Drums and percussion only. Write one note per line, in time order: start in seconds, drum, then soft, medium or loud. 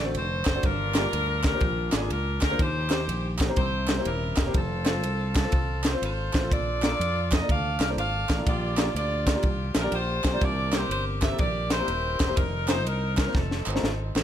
0.14 ride medium
0.45 kick loud
0.45 snare loud
0.45 clap medium
0.45 ride medium
0.63 kick loud
0.63 ride medium
0.95 snare loud
0.95 clap medium
0.95 ride medium
1.13 ride medium
1.44 kick loud
1.44 snare loud
1.44 clap loud
1.44 ride medium
1.60 kick loud
1.60 ride medium
1.92 snare loud
1.92 clap loud
1.92 ride medium
2.10 ride medium
2.41 kick loud
2.41 snare loud
2.41 clap medium
2.41 ride medium
2.59 kick loud
2.59 ride medium
2.90 snare loud
2.90 clap loud
2.90 ride medium
3.09 ride medium
3.39 kick loud
3.39 snare loud
3.39 clap loud
3.39 ride medium
3.56 kick loud
3.56 ride medium
3.88 snare loud
3.88 clap loud
3.88 ride medium
4.05 ride medium
4.37 kick loud
4.37 snare loud
4.37 clap medium
4.37 ride medium
4.54 kick loud
4.54 ride medium
4.86 snare loud
4.86 clap medium
4.86 ride medium
5.03 ride medium
5.35 kick loud
5.35 snare loud
5.35 clap loud
5.35 ride medium
5.52 kick loud
5.52 ride medium
5.84 snare loud
5.84 clap loud
5.84 ride medium
6.03 ride medium
6.33 kick loud
6.33 snare loud
6.33 clap medium
6.33 ride medium
6.51 kick loud
6.51 ride medium
6.82 snare loud
6.82 clap loud
6.82 ride medium
7.01 ride medium
7.32 kick loud
7.32 snare loud
7.32 clap loud
7.32 ride medium
7.49 kick loud
7.49 ride medium
7.80 snare loud
7.80 clap loud
7.80 ride medium
7.98 ride medium
8.29 kick loud
8.29 snare loud
8.29 clap medium
8.29 ride medium
8.46 kick loud
8.46 ride medium
8.77 snare loud
8.77 clap loud
8.77 ride medium
8.96 ride medium
9.27 kick loud
9.27 snare loud
9.27 clap loud
9.27 ride medium
9.43 kick loud
9.43 ride medium
9.74 snare loud
9.74 clap loud
9.74 ride medium
9.92 ride medium
10.24 kick loud
10.24 snare loud
10.24 clap medium
10.24 ride medium
10.41 kick loud
10.41 ride medium
10.73 snare loud
10.73 clap loud
10.73 ride medium
10.91 ride medium
11.22 kick loud
11.22 snare loud
11.22 clap loud
11.22 ride medium
11.38 kick loud
11.38 ride medium
11.70 snare loud
11.70 clap loud
11.70 ride medium
11.88 ride medium
12.20 kick medium
12.20 snare loud
12.20 clap medium
12.20 ride medium
12.37 kick loud
12.37 ride medium
12.68 snare loud
12.68 clap loud
12.68 ride medium
12.87 ride medium
13.17 kick loud
13.17 snare loud
13.17 clap loud
13.17 ride medium
13.35 kick loud
13.35 snare medium
13.51 snare medium
13.66 clap loud
13.76 snare medium
13.84 snare medium
14.16 snare loud
14.16 clap medium